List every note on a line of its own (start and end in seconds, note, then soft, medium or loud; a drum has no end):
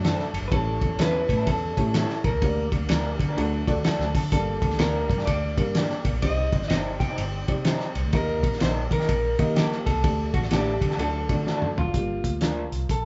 0.00 0.13 F#2 loud
0.00 0.50 F#3 medium
0.00 0.38 A3 medium
0.00 2.38 A3 medium
0.00 0.22 A3 medium
0.00 0.38 D4 medium
0.00 0.50 D4 medium
0.00 0.23 D4 loud
0.00 0.38 F#4 medium
0.00 0.38 A4 medium
0.00 0.38 D5 loud
0.04 0.23 F#4 loud
0.04 0.23 A4 loud
0.04 snare medium
0.04 ride medium
0.20 snare soft
0.33 0.41 F#1 loud
0.33 ride medium
0.42 0.49 G1 medium
0.48 0.76 A1 loud
0.48 1.25 A2 medium
0.48 3.34 G3 medium
0.48 1.28 C#4 medium
0.48 2.39 C#4 medium
0.48 1.28 E4 medium
0.48 1.28 G4 medium
0.48 1.28 A4 medium
0.48 0.52 B4 medium
0.48 1.28 C#5 medium
0.48 kick loud
0.48 ride medium
0.53 1.01 A4 loud
0.82 0.96 E2 medium
0.82 kick loud
0.82 ride medium
0.98 1.24 E2 loud
0.98 1.18 G3 medium
0.98 1.18 C#4 loud
0.98 1.18 E4 medium
0.98 1.19 A4 medium
0.98 1.48 B4 loud
0.98 snare loud
0.98 ride medium
1.29 1.43 A2 loud
1.29 kick medium
1.29 ride medium
1.37 1.47 G3 soft
1.37 1.47 C#4 medium
1.37 1.47 E4 medium
1.37 1.46 A4 medium
1.46 1.71 E2 loud
1.46 2.24 A4 medium
1.46 kick loud
1.46 ride medium
1.77 2.04 A2 loud
1.77 2.28 C#4 medium
1.77 2.29 E4 medium
1.77 2.29 G4 medium
1.77 2.29 A4 medium
1.77 2.29 C#5 medium
1.77 kick medium
1.77 ride medium
1.94 2.13 G3 medium
1.94 2.14 C#4 medium
1.94 2.14 E4 medium
1.94 2.14 A4 medium
1.94 snare medium
1.94 ride medium
2.10 snare soft
2.24 2.31 A1 medium
2.24 2.69 A#4 medium
2.24 kick medium
2.24 ride medium
2.33 2.40 C#2 medium
2.42 2.67 D2 loud
2.42 3.16 D3 medium
2.42 3.18 A#3 medium
2.42 3.36 A#3 medium
2.42 6.19 D4 medium
2.42 3.19 D4 medium
2.42 3.19 G4 medium
2.42 3.19 A#4 medium
2.42 2.49 C#5 medium
2.42 kick loud
2.42 ride medium
2.48 3.22 D5 medium
2.72 2.86 D2 medium
2.72 kick medium
2.72 ride medium
2.89 3.15 D2 medium
2.89 3.08 A#3 medium
2.89 3.08 D4 medium
2.89 3.09 G4 loud
2.89 3.09 A#4 medium
2.89 snare loud
2.89 ride medium
3.19 3.34 D3 medium
3.19 kick medium
3.19 ride medium
3.29 3.38 A#3 medium
3.29 3.38 D4 medium
3.29 3.37 G4 medium
3.29 3.37 A#4 medium
3.37 3.62 D2 loud
3.37 4.11 D3 medium
3.37 4.32 F#3 medium
3.37 3.61 A3 medium
3.37 4.32 A3 medium
3.37 3.61 D4 medium
3.37 3.61 F#4 medium
3.37 3.61 A4 medium
3.37 3.61 D5 loud
3.37 ride medium
3.67 4.19 A3 medium
3.67 4.19 D4 medium
3.67 4.19 F#4 medium
3.67 4.19 A4 medium
3.67 4.19 D5 loud
3.67 muted fingered electric bass stroke soft
3.67 kick medium
3.67 ride medium
3.76 3.83 D#2 medium
3.84 4.03 A3 loud
3.84 4.03 D4 medium
3.84 4.04 F#4 loud
3.84 4.04 A4 loud
3.84 4.13 F#5 medium
3.84 muted fingered electric bass stroke soft
3.84 snare loud
3.84 ride medium
3.99 4.12 D2 medium
3.99 snare soft
4.14 4.29 D3 medium
4.14 4.32 A5 medium
4.14 kick loud
4.14 open hi-hat medium
4.14 ride medium
4.32 4.57 G1 loud
4.32 5.06 G2 medium
4.32 10.95 G3 medium
4.32 5.09 A#3 medium
4.32 6.21 A#3 medium
4.32 5.09 D4 medium
4.32 5.09 G4 medium
4.32 4.77 A4 medium
4.32 5.09 D5 medium
4.32 kick loud
4.32 hi-hat pedal medium
4.32 ride medium
4.62 4.76 D2 medium
4.62 kick loud
4.62 ride medium
4.71 snare soft
4.79 5.04 D2 loud
4.79 4.98 G3 medium
4.79 4.99 A#3 loud
4.79 4.99 D4 medium
4.79 4.99 G4 medium
4.79 5.25 A#4 medium
4.79 snare loud
4.79 ride medium
5.10 5.24 G2 medium
5.10 kick medium
5.10 ride medium
5.18 5.28 G3 soft
5.18 5.27 A#3 medium
5.18 5.27 D4 medium
5.18 5.27 G4 medium
5.18 snare soft
5.26 5.52 D2 loud
5.26 6.22 D5 medium
5.26 kick medium
5.26 ride medium
5.57 5.84 G2 medium
5.57 6.09 A#3 medium
5.57 6.09 D4 medium
5.57 6.09 G4 medium
5.57 6.09 A#4 medium
5.57 6.09 D5 medium
5.57 kick loud
5.57 ride medium
5.74 5.94 G3 medium
5.74 5.94 A#3 medium
5.74 5.94 D4 medium
5.74 5.95 G4 loud
5.74 snare medium
5.74 ride medium
5.90 snare soft
6.04 6.12 G1 loud
6.04 kick medium
6.04 ride medium
6.13 6.21 A#1 medium
6.22 6.47 C2 loud
6.22 6.97 C3 medium
6.22 6.99 C4 medium
6.22 8.12 C4 medium
6.22 7.00 D#4 medium
6.22 10.00 D#4 medium
6.22 7.00 G4 medium
6.22 7.00 C5 medium
6.22 6.30 D5 medium
6.22 6.67 D#5 loud
6.22 kick loud
6.22 ride medium
6.30 7.03 D#5 medium
6.52 6.67 G1 medium
6.52 kick medium
6.52 ride medium
6.62 snare soft
6.68 7.02 G1 medium
6.68 6.89 G3 medium
6.68 6.89 C4 medium
6.68 6.89 D#4 medium
6.68 6.90 G4 medium
6.68 6.77 D#5 loud
6.68 snare loud
6.68 ride medium
7.00 7.14 C3 loud
7.00 7.91 G5 loud
7.00 kick medium
7.00 ride medium
7.08 7.18 G3 medium
7.08 7.18 C4 medium
7.08 7.18 D#4 medium
7.08 7.17 G4 medium
7.18 7.43 G1 loud
7.18 ride medium
7.47 7.75 C3 loud
7.47 7.99 C4 medium
7.47 8.00 D#4 medium
7.47 7.99 G4 medium
7.47 7.99 C5 medium
7.47 8.00 D5 medium
7.47 kick loud
7.47 ride medium
7.65 7.84 G3 medium
7.65 7.85 C4 medium
7.65 7.85 D#4 loud
7.65 7.85 G4 medium
7.65 snare loud
7.65 ride medium
7.80 snare soft
7.95 8.03 C2 medium
7.95 ride medium
8.05 8.12 D2 medium
8.13 8.43 D#2 loud
8.13 8.87 D#3 medium
8.13 8.90 A#3 medium
8.13 10.02 A#3 medium
8.13 8.90 D#4 medium
8.13 8.90 G4 medium
8.13 8.90 A#4 medium
8.13 8.62 A#4 loud
8.13 8.90 D#5 medium
8.13 kick loud
8.13 ride medium
8.43 8.57 A#1 medium
8.43 kick medium
8.43 ride medium
8.53 snare soft
8.60 8.86 A#1 medium
8.60 8.80 G3 medium
8.60 8.80 A#3 medium
8.60 8.81 D#4 medium
8.60 8.81 G4 medium
8.60 8.70 C5 loud
8.60 snare loud
8.60 ride medium
8.91 9.05 D#3 loud
8.91 9.56 A#4 loud
8.91 kick medium
8.91 ride medium
9.00 9.09 G3 soft
9.00 9.09 A#3 medium
9.00 9.08 D#4 medium
9.00 9.08 G4 medium
9.00 snare soft
9.09 9.34 A#1 medium
9.09 kick loud
9.09 ride medium
9.39 9.66 D#3 loud
9.39 9.90 A#3 medium
9.39 9.90 D#4 medium
9.39 9.43 F#4 medium
9.39 9.90 A#4 medium
9.39 9.90 D#5 medium
9.39 kick loud
9.39 ride medium
9.45 9.93 G4 medium
9.55 9.74 G3 medium
9.55 9.75 A#3 loud
9.55 9.75 D#4 loud
9.55 9.65 G4 loud
9.55 9.76 G4 loud
9.55 snare medium
9.55 ride medium
9.72 snare soft
9.86 9.94 D#2 medium
9.86 10.31 A4 loud
9.86 kick loud
9.86 ride medium
9.95 10.02 C2 medium
10.03 10.29 D2 loud
10.03 10.77 D3 medium
10.03 11.92 A3 medium
10.03 10.80 A3 medium
10.03 10.80 D4 medium
10.03 11.92 D4 medium
10.03 10.80 G4 medium
10.03 10.80 A4 medium
10.03 10.81 D5 medium
10.03 kick loud
10.03 ride medium
10.34 10.48 A1 medium
10.34 10.39 F#4 medium
10.34 kick medium
10.34 ride medium
10.43 snare soft
10.51 10.76 A1 medium
10.51 10.70 A3 loud
10.51 10.70 D4 medium
10.51 10.70 G4 medium
10.51 10.96 G4 medium
10.51 10.71 A4 loud
10.51 snare loud
10.51 ride medium
10.81 10.96 D3 loud
10.81 kick medium
10.81 ride medium
10.90 10.99 A3 medium
10.90 10.99 D4 medium
10.90 10.99 G4 medium
10.90 10.99 A4 medium
10.90 snare soft
10.98 11.23 D2 loud
10.98 11.73 D3 medium
10.98 11.93 F#3 medium
10.98 11.23 A3 medium
10.98 11.24 D4 medium
10.98 11.24 F#4 medium
10.98 11.73 A4 medium
10.98 11.24 A4 medium
10.98 11.24 D5 medium
10.98 ride medium
11.29 11.56 D3 loud
11.29 11.81 A3 medium
11.29 11.81 D4 medium
11.29 11.81 F#4 medium
11.29 11.81 A4 medium
11.29 11.81 D5 medium
11.29 kick loud
11.29 ride medium
11.46 11.65 A3 medium
11.46 11.66 D4 loud
11.46 11.66 F#4 medium
11.46 11.66 A4 loud
11.46 snare medium
11.62 mid tom medium
11.77 11.84 D2 loud
11.77 12.90 F4 medium
11.77 floor tom loud
11.84 11.92 F#1 medium
11.93 12.19 G1 medium
11.93 12.68 G2 medium
11.93 12.71 A#3 medium
11.93 12.71 D4 medium
11.93 12.71 F4 medium
11.93 12.71 G4 medium
11.93 kick loud
11.93 closed hi-hat medium
12.24 12.63 D2 medium
12.24 kick medium
12.24 closed hi-hat medium
12.41 12.60 A#3 medium
12.41 12.60 D4 loud
12.41 12.61 F4 medium
12.41 12.61 A#4 loud
12.41 snare loud
12.41 closed hi-hat medium
12.72 12.86 C2 medium
12.72 closed hi-hat medium
12.89 13.05 A#1 loud
12.89 13.05 A4 medium
12.89 kick medium
12.89 closed hi-hat medium